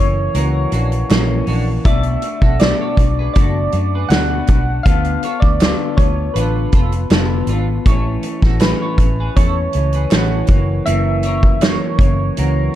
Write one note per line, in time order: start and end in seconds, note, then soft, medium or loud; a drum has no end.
0.00 0.27 F#1 medium
0.00 0.33 E3 soft
0.00 0.35 A#3 soft
0.00 0.35 C#4 medium
0.00 1.43 C#5 medium
0.33 0.65 C#2 loud
0.33 0.72 F#2 medium
0.33 0.72 E3 medium
0.33 0.71 A#3 medium
0.33 0.70 C#4 medium
0.33 0.72 F#4 medium
0.33 0.71 A#4 medium
0.33 closed hi-hat medium
0.71 1.02 A#1 medium
0.71 1.08 E3 soft
0.71 1.09 A#3 medium
0.71 1.09 C#4 soft
0.71 0.91 D4 medium
0.71 0.91 F#4 medium
0.71 closed hi-hat medium
0.92 closed hi-hat medium
1.09 1.40 A#1 medium
1.09 1.47 F#2 medium
1.09 1.47 E3 medium
1.09 1.46 A#3 loud
1.09 1.45 C#4 loud
1.09 snare loud
1.09 clap medium
1.09 closed hi-hat medium
1.46 1.78 A#1 medium
1.46 1.86 E3 medium
1.46 1.85 A#3 medium
1.46 1.85 C#4 medium
1.46 1.66 D4 medium
1.46 1.66 F#4 medium
1.46 open hi-hat soft
1.85 2.15 B1 loud
1.85 2.23 B2 medium
1.85 2.23 A3 medium
1.85 2.22 D4 medium
1.85 2.21 F#4 medium
1.85 2.04 B4 medium
1.85 2.03 D5 loud
1.85 2.63 E5 loud
1.85 kick loud
1.85 closed hi-hat medium
2.03 closed hi-hat medium
2.22 2.59 A3 soft
2.22 2.60 D4 medium
2.22 2.60 F#4 medium
2.22 closed hi-hat medium
2.42 2.72 B1 medium
2.42 2.60 F#4 medium
2.42 2.60 A4 medium
2.42 kick loud
2.59 2.98 B2 medium
2.59 2.98 A3 medium
2.59 2.99 D4 medium
2.59 2.97 F#4 medium
2.59 3.32 D5 medium
2.59 snare loud
2.59 clap medium
2.59 closed hi-hat medium
2.81 2.98 A4 medium
2.81 2.98 C#5 medium
2.97 3.28 B1 medium
2.97 3.35 A3 soft
2.97 3.36 D4 medium
2.97 3.36 F#4 medium
2.97 kick loud
2.97 closed hi-hat medium
3.19 3.37 G#4 medium
3.19 3.36 B4 medium
3.34 3.66 F#1 medium
3.34 3.73 B2 medium
3.34 3.73 A3 medium
3.34 3.73 D4 medium
3.34 4.12 D5 loud
3.34 kick loud
3.34 closed hi-hat loud
3.39 3.71 F#4 medium
3.39 3.56 F#4 medium
3.39 3.55 A4 medium
3.72 4.03 F#2 medium
3.72 4.10 A3 soft
3.72 4.11 D4 soft
3.72 4.10 F#4 medium
3.72 closed hi-hat medium
3.95 4.12 G#4 medium
3.95 4.10 B4 medium
4.09 4.40 D2 medium
4.09 4.48 B2 medium
4.09 4.49 A3 medium
4.09 4.48 D4 medium
4.09 4.64 B4 medium
4.09 4.87 F#5 loud
4.09 snare loud
4.09 clap medium
4.09 closed hi-hat medium
4.13 4.65 F#4 medium
4.13 4.46 F#4 medium
4.47 4.79 B1 medium
4.47 4.86 D4 soft
4.47 4.85 F#4 medium
4.47 kick loud
4.47 closed hi-hat medium
4.51 4.87 A3 soft
4.83 5.16 D2 loud
4.83 5.24 D3 medium
4.83 5.24 B3 medium
4.83 5.43 F5 loud
4.83 kick loud
4.83 closed hi-hat medium
4.88 5.24 F4 medium
4.88 5.23 A4 medium
5.04 closed hi-hat soft
5.23 5.62 F4 soft
5.23 5.61 A4 medium
5.23 5.42 A4 medium
5.23 5.42 C#5 medium
5.23 closed hi-hat medium
5.27 5.61 B3 soft
5.40 5.72 D2 medium
5.40 5.99 D5 medium
5.40 kick loud
5.60 5.99 D3 medium
5.60 5.99 B3 medium
5.60 6.00 F4 medium
5.60 5.97 A4 medium
5.60 snare loud
5.60 clap medium
5.60 closed hi-hat medium
5.97 6.28 D2 loud
5.97 6.37 F4 medium
5.97 6.36 A4 medium
5.97 6.36 C#5 medium
5.97 kick loud
5.97 closed hi-hat medium
6.02 6.36 B3 soft
6.34 6.66 A1 loud
6.34 6.73 D3 medium
6.34 6.74 B3 medium
6.34 6.72 F4 medium
6.34 7.44 B4 medium
6.34 6.72 B4 medium
6.34 closed hi-hat loud
6.38 6.73 F4 medium
6.38 6.71 A4 medium
6.72 7.04 F1 medium
6.72 7.11 B3 soft
6.72 7.11 F4 soft
6.72 6.92 F4 medium
6.72 7.11 A4 soft
6.72 6.92 A4 medium
6.72 kick medium
6.72 closed hi-hat medium
6.92 closed hi-hat medium
7.10 7.41 F1 medium
7.10 7.49 D3 medium
7.10 7.49 B3 medium
7.10 7.50 F4 medium
7.10 7.47 A4 medium
7.10 snare loud
7.10 clap medium
7.10 closed hi-hat medium
7.47 7.78 G#1 medium
7.47 7.67 D4 medium
7.47 7.67 F4 medium
7.47 7.87 F4 soft
7.47 7.86 A4 medium
7.47 closed hi-hat medium
7.52 7.87 B3 soft
7.85 8.16 A1 medium
7.85 8.23 A2 medium
7.85 8.24 E3 medium
7.85 8.24 A3 loud
7.85 8.22 C#4 loud
7.85 8.05 A4 medium
7.85 8.04 C#5 loud
7.85 kick loud
7.85 closed hi-hat medium
8.23 8.62 A3 medium
8.23 8.61 C#4 medium
8.23 closed hi-hat medium
8.27 8.61 E3 soft
8.42 8.73 A1 medium
8.42 8.62 F#4 medium
8.42 8.62 A4 medium
8.42 kick loud
8.42 snare soft
8.60 8.99 A2 medium
8.60 8.99 E3 medium
8.60 8.98 A3 medium
8.60 9.32 B4 medium
8.60 snare loud
8.60 clap medium
8.60 closed hi-hat loud
8.64 8.96 C#4 medium
8.82 8.99 A4 medium
8.82 8.99 C#5 medium
8.98 9.28 A1 loud
8.98 9.35 E3 soft
8.98 9.36 A3 soft
8.98 9.36 C#4 medium
8.98 kick loud
8.98 closed hi-hat medium
9.20 9.37 G#4 medium
9.20 9.37 B4 medium
9.35 9.66 E2 medium
9.35 9.73 A2 medium
9.35 9.74 E3 medium
9.35 9.74 A3 medium
9.35 9.72 C#4 medium
9.35 9.55 A4 medium
9.35 10.91 C#5 medium
9.35 kick medium
9.35 closed hi-hat medium
9.39 9.56 E4 medium
9.73 10.05 C#2 medium
9.73 10.11 E3 soft
9.73 10.11 A3 soft
9.73 10.11 C#4 soft
9.73 closed hi-hat medium
9.93 10.12 G#4 medium
9.93 10.11 B4 medium
9.93 closed hi-hat medium
10.11 10.42 A1 medium
10.11 10.49 A2 medium
10.11 10.49 E3 medium
10.11 10.50 A3 medium
10.11 10.47 C#4 medium
10.11 10.66 B4 medium
10.11 snare loud
10.11 clap medium
10.11 closed hi-hat medium
10.15 10.66 F#4 medium
10.47 10.79 F#1 loud
10.47 10.86 A#3 medium
10.47 10.86 C#4 medium
10.47 kick loud
10.47 closed hi-hat medium
10.52 10.85 E3 soft
10.85 11.77 F#1 medium
10.85 11.23 F#2 medium
10.85 11.24 E3 medium
10.85 11.24 A#3 medium
10.85 11.23 C#4 medium
10.85 11.63 E5 loud
10.85 closed hi-hat medium
11.23 11.62 A#3 soft
11.23 11.61 C#4 medium
11.23 11.43 A#4 medium
11.23 11.43 C#5 medium
11.23 closed hi-hat medium
11.27 11.62 E3 soft
11.43 kick medium
11.61 11.99 F#2 medium
11.61 12.00 E3 medium
11.61 12.00 A#3 medium
11.61 11.97 C#4 medium
11.61 11.99 C#5 loud
11.61 snare loud
11.61 clap medium
11.61 closed hi-hat medium
11.99 12.29 F#1 loud
11.99 12.36 E3 soft
11.99 12.38 A#3 medium
11.99 12.36 C#4 medium
11.99 12.75 C#5 medium
11.99 kick loud
11.99 closed hi-hat medium
12.36 12.68 C#2 medium
12.36 12.74 F#2 medium
12.36 12.75 E3 medium
12.36 12.74 A#3 medium
12.36 12.73 C#4 medium
12.36 12.74 F#4 medium
12.36 12.73 A#4 medium
12.36 closed hi-hat medium